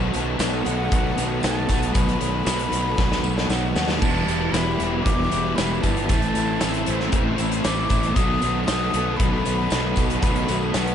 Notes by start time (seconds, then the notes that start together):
Already playing: B1 B2 D#3 F#3 A3 B3 D#4 F#4 A4 B4 F#5 A5 D#6
0.12 B1 F#3 B3 D#4 A4, closed hi-hat, tambourine
0.39 B1 D#3 F#3 A3 B3 D#4 F#4 A4, snare, closed hi-hat, tambourine
0.65 B1 F#3 A3 B3 D#4 A4 F#5, closed hi-hat
0.91 B1 B2 D#3 F#3 A3 B3 D#4 F#4 A4, kick, closed hi-hat
1.17 B1 F#3 B3 D#4 A4, closed hi-hat, tambourine
1.41 B1 F#3 A3 B3 D#4 A4 A5, snare, closed hi-hat, tambourine
1.68 B1 F#3 B3 D#4 F#4 A4, kick, closed hi-hat, tambourine
1.72 A3
1.83 closed hi-hat
1.93 B1 B2 D#3 F#3 A3 B3 B5, kick, closed hi-hat, tambourine
1.97 D#4 F#4 A4
2.09 closed hi-hat
2.19 B1 F#3 B3 D#4 A4, closed hi-hat
2.45 B1 D#3 F#3 A3 B3 D#4 A4, snare, closed hi-hat, tambourine
2.49 F#4
2.59 closed hi-hat
2.70 B1 F#3 A3 B3 D#4 A4, closed hi-hat
2.97 B1 B2 D#3 F#3 A3 B3 D#4 F#4 A4, kick, snare
3.12 snare
3.23 B1 F#3 B3 D#4 A4, tambourine
3.38 snare
3.49 B1 F#3 A3 B3 D#4 F#5, snare, tambourine
3.53 A4
3.75 D#2 F#3 B3 D#4 F#4 A4, snare, tambourine
3.79 A3
3.89 snare
4.00 E1 E2 B2 E3 G3 E5 G5 A5 D6, kick, tambourine, crash
4.04 B3 E4
4.27 E1 G3 B3 E4, closed hi-hat, tambourine
4.52 E1 E3 G3 B3 E4 B5, snare, closed hi-hat, tambourine
4.78 E1 E2 B2 E3 G3 B3 E4, closed hi-hat
5.03 E1 E2 B2 E3 G3 D6, kick, closed hi-hat
5.07 B3 E4
5.30 E1 G3 B3 E4, closed hi-hat, tambourine
5.56 E1 E2 B2 E3 G3 B3 B5, snare, closed hi-hat, tambourine
5.60 E4
5.81 G1 B3 E4 A5, kick, closed hi-hat, tambourine
5.85 E3 G3
5.97 closed hi-hat
6.09 A1 A2 E3 A3 C4 E4 C5 A5 E6, kick, closed hi-hat, tambourine
6.22 closed hi-hat
6.35 A1 A3 C4 E4, closed hi-hat, tambourine
6.61 A1 E3 A3 C4 E4, snare, closed hi-hat, tambourine
6.74 closed hi-hat
6.86 A1 A2 E3 A3 C4 E4, closed hi-hat
7.00 snare
7.12 A1 A2 E3 A3 C4 E4, kick, closed hi-hat
7.38 A1 E3 A3 C4 E4, closed hi-hat, tambourine
7.52 closed hi-hat
7.64 A1 A2 E3 A3 C4 E4 D6, snare, closed hi-hat, tambourine
7.90 A1 E3 A3 C4 E4, kick, closed hi-hat, tambourine
8.03 closed hi-hat
8.15 B1 B2 D#3 F#3 A3 B3 D#4 F#4 A4 B4 F#5 D#6, kick, closed hi-hat, tambourine
8.41 B1 F#3 B3 D#4 A4, closed hi-hat, tambourine
8.64 B1 D#3 F#3 A3 B3 D#6, snare, closed hi-hat, tambourine
8.69 D#4 F#4 A4
8.93 B1 B2 F#3 A3 B3 D#4 A4, closed hi-hat
9.16 B1 B2 D#3 F#3 A3 B3 B5, kick, closed hi-hat
9.21 D#4 F#4 A4
9.45 B1 F#3 B3 D#4 A4, closed hi-hat, tambourine
9.70 B1 B2 F#3 A3 B3 D#4 A4, snare, closed hi-hat, tambourine
9.96 B1 F#3 A3 B3 D#4 F#4 A4, kick, closed hi-hat, tambourine
10.10 closed hi-hat
10.21 B1 B2 D#3 F#3 A3 B3 D#4 F#4 A4 B5, kick, closed hi-hat, tambourine
10.36 closed hi-hat
10.48 B1 F#3 B3 D#4 A4, closed hi-hat, tambourine
10.73 B1 D#3 F#3 A3 B3 D#4 A4 F#5, snare, closed hi-hat, tambourine
10.77 F#4
10.87 closed hi-hat